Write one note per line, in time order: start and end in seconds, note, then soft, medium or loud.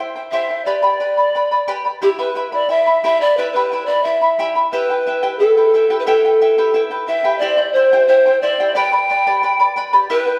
0.00 0.16 E4 medium
0.00 0.15 C5 medium
0.00 0.16 E5 soft
0.00 0.14 G5 medium
0.16 0.32 E4 soft
0.16 0.32 C5 soft
0.16 0.32 G5 soft
0.31 0.49 E4 medium
0.31 0.50 G4 medium
0.31 0.49 C5 medium
0.31 0.67 E5 medium
0.31 0.50 E5 medium
0.31 0.48 G5 medium
0.49 0.67 E4 soft
0.49 0.67 C5 soft
0.49 0.66 G5 soft
0.65 0.82 G4 medium
0.65 0.82 B4 medium
0.65 1.68 D5 medium
0.65 0.81 D5 medium
0.65 0.82 G5 medium
0.65 0.81 B5 medium
0.82 1.01 G4 soft
0.82 0.99 B4 soft
0.82 0.99 D5 medium
0.82 0.99 G5 soft
0.82 1.00 B5 medium
1.00 1.18 B4 medium
1.00 1.17 D5 medium
1.00 1.17 G5 medium
1.00 1.16 B5 medium
1.17 1.34 B4 soft
1.17 1.34 D5 soft
1.17 1.34 B5 soft
1.35 1.51 B4 soft
1.35 1.51 D5 medium
1.35 1.52 G5 soft
1.35 1.50 B5 medium
1.51 1.67 B4 soft
1.51 1.67 D5 medium
1.51 1.68 B5 medium
1.68 1.85 G4 medium
1.68 1.85 B4 medium
1.68 1.85 D5 medium
1.68 1.85 G5 medium
1.68 1.84 B5 medium
1.85 2.02 B4 soft
1.85 2.02 D5 soft
1.85 2.02 B5 soft
2.02 2.18 E4 medium
2.02 2.19 G4 medium
2.02 2.09 G4 medium
2.02 2.18 E5 medium
2.02 2.19 G5 medium
2.02 2.18 B5 medium
2.19 2.35 E4 soft
2.19 2.37 G4 soft
2.19 2.51 B4 medium
2.19 2.36 E5 medium
2.19 2.34 G5 medium
2.19 2.35 B5 medium
2.35 2.52 E4 medium
2.35 2.51 E5 medium
2.35 2.53 G5 medium
2.35 2.51 B5 medium
2.52 2.69 E4 soft
2.52 2.72 D5 medium
2.52 2.69 E5 soft
2.52 2.69 B5 soft
2.69 2.87 E4 medium
2.69 2.86 E5 medium
2.69 3.04 E5 loud
2.69 2.86 G5 medium
2.69 2.85 B5 medium
2.86 3.03 E4 soft
2.86 3.03 E5 soft
2.86 3.03 B5 medium
3.04 3.21 E4 medium
3.04 3.21 G4 medium
3.04 3.21 E5 medium
3.04 3.20 E5 medium
3.04 3.21 G5 medium
3.04 3.20 B5 medium
3.21 3.37 E4 soft
3.21 3.39 D5 medium
3.21 3.38 E5 soft
3.21 3.38 B5 soft
3.37 3.55 E4 medium
3.37 3.55 G4 medium
3.37 3.52 B4 medium
3.37 3.55 E5 medium
3.37 3.55 G5 medium
3.37 3.55 B5 medium
3.53 3.71 E4 medium
3.53 3.72 G4 medium
3.53 3.87 B4 medium
3.53 3.72 E5 medium
3.53 3.70 G5 medium
3.53 3.72 B5 medium
3.72 3.89 E4 medium
3.72 3.88 E5 medium
3.72 3.88 G5 medium
3.72 3.87 B5 medium
3.86 4.05 D5 medium
3.86 4.04 E5 soft
3.86 4.05 B5 medium
3.90 4.04 E4 soft
4.03 4.22 E4 medium
4.03 4.55 E5 medium
4.03 4.21 E5 medium
4.03 4.22 G5 medium
4.03 4.20 B5 medium
4.22 4.38 E4 soft
4.22 4.39 E5 soft
4.22 4.39 B5 soft
4.39 4.56 E4 medium
4.39 4.56 G4 medium
4.39 4.55 E5 medium
4.39 4.56 G5 medium
4.39 4.54 B5 medium
4.55 4.72 E4 soft
4.55 4.72 E5 soft
4.55 4.72 B5 soft
4.72 4.90 E4 medium
4.72 4.90 G4 medium
4.72 5.36 B4 medium
4.72 4.90 B4 medium
4.72 4.90 E5 medium
4.72 4.88 G5 medium
4.90 5.06 E4 soft
4.90 5.07 B4 soft
4.90 5.06 G5 soft
5.07 5.22 E4 medium
5.07 5.22 B4 medium
5.07 5.22 E5 medium
5.07 5.22 G5 medium
5.23 5.40 E4 medium
5.23 5.40 G4 soft
5.23 5.40 B4 medium
5.23 5.39 E5 medium
5.23 5.40 G5 medium
5.39 5.57 E4 medium
5.39 5.96 A4 medium
5.39 5.56 B4 medium
5.39 5.57 E5 medium
5.39 5.56 G5 medium
5.57 5.73 E4 soft
5.57 5.73 B4 soft
5.57 5.74 G5 medium
5.74 5.89 E4 medium
5.74 5.89 B4 medium
5.74 5.90 E5 medium
5.74 5.89 G5 medium
5.90 6.06 E4 medium
5.90 6.05 G4 medium
5.90 6.06 B4 medium
5.90 6.06 E5 medium
5.90 6.07 G5 medium
5.99 6.07 B4 medium
6.06 6.24 E4 medium
6.06 6.24 G4 medium
6.06 6.81 A4 medium
6.06 6.24 B4 medium
6.06 6.24 E5 medium
6.06 6.23 G5 medium
6.25 6.41 E4 soft
6.25 6.41 B4 soft
6.25 6.41 G5 medium
6.41 6.57 E4 medium
6.41 6.57 B4 medium
6.41 6.57 E5 medium
6.41 6.57 G5 medium
6.58 6.73 E4 medium
6.58 6.75 G4 medium
6.58 6.73 B4 medium
6.58 6.73 E5 medium
6.58 6.74 G5 medium
6.74 6.91 E4 medium
6.74 6.90 B4 medium
6.74 6.91 E5 medium
6.74 6.90 G5 medium
6.91 7.07 E4 soft
6.91 7.08 B4 medium
6.91 7.08 G5 medium
7.07 7.23 E4 medium
7.07 7.24 B4 medium
7.07 7.38 E5 medium
7.07 7.24 E5 medium
7.07 7.23 G5 medium
7.24 7.40 E4 medium
7.24 7.40 G4 medium
7.24 7.42 B4 medium
7.24 7.41 E5 medium
7.24 7.41 G5 medium
7.39 7.58 E4 medium
7.39 7.58 G4 medium
7.39 7.57 C5 medium
7.39 7.72 D5 medium
7.39 7.59 E5 medium
7.39 7.56 G5 medium
7.58 7.75 E4 soft
7.58 7.75 C5 soft
7.58 7.75 G5 medium
7.73 7.92 E4 medium
7.73 8.05 C5 medium
7.73 7.92 C5 medium
7.73 7.92 E5 medium
7.77 7.92 G5 medium
7.93 8.08 E4 medium
7.93 8.10 G4 medium
7.93 8.09 C5 medium
7.93 8.08 E5 medium
7.93 8.09 G5 medium
8.08 8.26 E4 medium
8.08 8.43 C5 medium
8.08 8.25 C5 medium
8.08 8.26 E5 medium
8.08 8.25 G5 medium
8.26 8.42 E4 soft
8.26 8.43 C5 medium
8.26 8.43 G5 medium
8.41 8.59 E4 medium
8.41 8.59 C5 medium
8.41 8.77 D5 medium
8.41 8.59 E5 medium
8.41 8.59 G5 medium
8.60 8.76 E4 medium
8.60 8.74 G4 soft
8.60 8.76 C5 medium
8.60 8.76 E5 medium
8.60 8.75 G5 medium
8.75 8.93 G4 medium
8.75 8.93 B4 medium
8.75 8.92 D5 medium
8.75 9.77 G5 medium
8.75 8.93 G5 medium
8.75 8.91 B5 medium
8.92 9.09 B4 soft
8.92 9.10 D5 soft
8.92 9.09 B5 medium
9.09 9.26 B4 medium
9.09 9.26 D5 medium
9.09 9.26 G5 medium
9.09 9.25 B5 medium
9.27 9.44 G4 medium
9.27 9.42 B4 medium
9.27 9.43 D5 medium
9.27 9.42 G5 medium
9.27 9.43 B5 medium
9.43 9.59 B4 medium
9.43 9.59 D5 medium
9.43 9.60 G5 medium
9.43 9.59 B5 medium
9.60 9.76 B4 soft
9.60 9.76 D5 medium
9.60 9.76 B5 medium
9.76 9.92 B4 medium
9.76 9.92 D5 medium
9.76 9.92 G5 medium
9.76 9.92 B5 medium
9.93 10.08 G4 medium
9.93 10.09 B4 medium
9.93 10.10 D5 medium
9.93 10.10 G5 medium
9.93 10.10 B5 medium
10.10 10.27 E4 medium
10.10 10.27 G4 medium
10.10 10.39 B4 medium
10.10 10.26 B4 medium
10.10 10.27 E5 medium
10.10 10.26 G5 medium
10.27 10.39 E4 soft
10.27 10.39 B4 soft
10.27 10.39 G5 soft